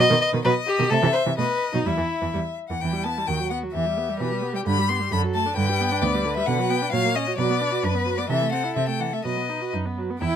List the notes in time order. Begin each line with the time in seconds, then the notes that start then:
0.00 B4 D#5
0.10 B2 D#3
0.21 D#5
0.33 B2 D#3
0.44 B2 F#3 B4 D#5
0.67 G4
0.79 B2 D#3
0.90 C3 A3 A4 E5
1.02 C3 E3
1.13 C5
1.26 C3 E3
1.38 B2 A3 B4 D#5
1.73 B2 F#3 D#4
1.86 E2 G3 E4 E5
1.97 E2 E3
2.22 E2 E3
2.33 E2 G3
2.69 E2 E3 F#5
2.81 E2 E3 E4 G5
2.92 G3
3.04 B3 A5
3.17 G3
3.27 D#2 D#3 F#4 G5
3.40 F#3
3.50 B3 F#5
3.63 F#3
3.73 E2 E3 G4 E5
3.85 G3
3.97 B3
4.09 G3
4.20 B2 E3 B4
4.32 G3
4.42 B3
4.53 G3 G5
4.65 G2 D3 B5
4.78 G3
4.89 B3 C6
5.00 G3
5.12 F#2 D3 A4 B5
5.23 F#3
5.34 A3 A5
5.46 D4
5.56 G2 D3 B4 G5
5.69 G3
5.80 B3
5.91 D4
6.02 D2 B3 D5
6.15 G3
6.25 D3
6.36 G3 E5
6.47 B2 D3 F#5
6.59 F#3
6.69 B3 G5
6.82 D4
6.92 A#2 F#3 C#5 F5
7.04 A#3
7.15 C#4 D#5
7.26 F#4
7.37 B2 F#3 B4 D5
7.50 B3
7.60 D4
7.72 F#4
7.83 F#2 D4 B4
7.95 B3
8.05 F#3
8.18 B3 D5
8.29 C3 E3 A4 E5
8.41 A3
8.52 C4 F#5
8.64 E4
8.76 C3 C4 E5
8.87 A3 G5
8.99 E3 F#5
9.13 A3 E5
9.24 B2 F#3 B4 D#5
9.37 B3
9.49 D#4
9.61 F#4
9.73 F#2 D#4
9.85 B3
9.97 F#3
10.10 B3
10.20 E2 E4 G5